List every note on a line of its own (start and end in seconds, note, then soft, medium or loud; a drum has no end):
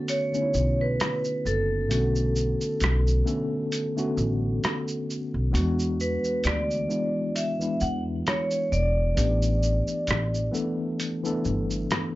0.00 0.32 D3 medium
0.00 0.33 A3 medium
0.00 0.34 B3 medium
0.00 0.35 C#4 medium
0.00 1.92 F#4 medium
0.00 5.55 D5 medium
0.08 0.82 C#5 loud
0.08 closed hi-hat medium
0.08 shaker medium
0.32 1.42 D3 medium
0.32 1.43 A3 medium
0.32 1.43 B3 medium
0.32 1.44 C#4 medium
0.32 0.40 D#4 medium
0.32 shaker soft
0.42 1.47 E4 medium
0.54 0.94 B1 medium
0.54 shaker soft
0.81 1.47 B4 medium
1.00 cross-stick loud
1.00 closed hi-hat medium
1.00 shaker medium
1.24 shaker soft
1.45 1.91 F#1 medium
1.45 5.05 A4 medium
1.45 shaker soft
1.89 2.53 B1 loud
1.89 2.87 D3 medium
1.89 2.87 A3 medium
1.89 2.87 B3 medium
1.89 2.88 C#4 medium
1.89 2.88 F#4 medium
1.89 closed hi-hat medium
1.89 shaker medium
2.16 shaker soft
2.36 shaker medium
2.61 shaker soft
2.80 3.21 B1 medium
2.80 cross-stick loud
2.80 closed hi-hat medium
2.80 shaker soft
3.07 shaker soft
3.24 3.74 D3 medium
3.24 3.74 A3 medium
3.24 3.75 B3 medium
3.24 3.75 C#4 medium
3.24 3.75 A4 medium
3.24 shaker soft
3.72 closed hi-hat medium
3.72 shaker medium
3.96 5.06 D3 medium
3.96 5.07 A3 medium
3.96 5.07 B3 medium
3.96 5.07 C#4 medium
3.96 5.08 F#4 medium
3.96 shaker soft
4.17 4.57 A1 medium
4.17 shaker soft
4.64 cross-stick loud
4.64 closed hi-hat medium
4.64 shaker medium
4.88 shaker soft
5.10 shaker soft
5.34 5.55 B1 medium
5.52 6.16 E2 loud
5.52 6.50 E3 medium
5.52 6.50 G#3 medium
5.52 6.50 B3 medium
5.52 6.51 D4 medium
5.52 6.51 F#4 loud
5.52 closed hi-hat medium
5.52 shaker medium
5.79 shaker soft
6.00 6.42 B4 medium
6.00 shaker medium
6.24 shaker medium
6.44 6.84 D2 loud
6.44 7.31 D5 medium
6.44 cross-stick loud
6.44 closed hi-hat medium
6.44 shaker soft
6.71 shaker soft
6.88 7.37 E3 medium
6.88 7.38 G#3 medium
6.88 7.38 B3 medium
6.88 7.38 D4 medium
6.88 7.39 E4 medium
6.88 shaker soft
7.36 7.82 E5 medium
7.36 closed hi-hat medium
7.36 shaker medium
7.59 8.70 E3 medium
7.59 8.70 G#3 medium
7.59 8.71 B3 medium
7.59 8.71 D4 medium
7.59 8.71 E4 medium
7.59 shaker soft
7.80 8.21 E2 medium
7.80 8.02 F#5 medium
7.80 shaker soft
8.27 8.73 C#5 medium
8.27 cross-stick loud
8.27 closed hi-hat medium
8.27 shaker medium
8.51 shaker soft
8.72 9.12 E1 medium
8.72 10.49 D5 medium
8.72 shaker medium
9.15 9.80 A1 loud
9.15 10.13 E3 medium
9.15 10.14 A3 medium
9.15 10.14 B3 medium
9.15 10.14 D4 medium
9.15 10.15 G4 medium
9.15 closed hi-hat medium
9.15 shaker medium
9.42 shaker soft
9.63 shaker medium
9.88 shaker soft
10.07 10.48 A1 loud
10.07 cross-stick loud
10.07 closed hi-hat soft
10.07 shaker soft
10.34 shaker soft
10.52 11.01 E3 medium
10.52 11.01 A3 medium
10.52 11.02 B3 medium
10.52 11.02 D4 medium
10.52 11.02 A4 medium
10.52 shaker soft
11.00 closed hi-hat medium
11.00 shaker medium
11.23 12.15 E3 medium
11.23 12.15 A3 medium
11.23 12.15 B3 medium
11.23 12.15 D4 medium
11.23 12.15 A4 medium
11.23 shaker soft
11.45 11.84 G1 medium
11.45 shaker soft
11.71 shaker soft
11.91 cross-stick loud
11.91 closed hi-hat medium
11.91 shaker medium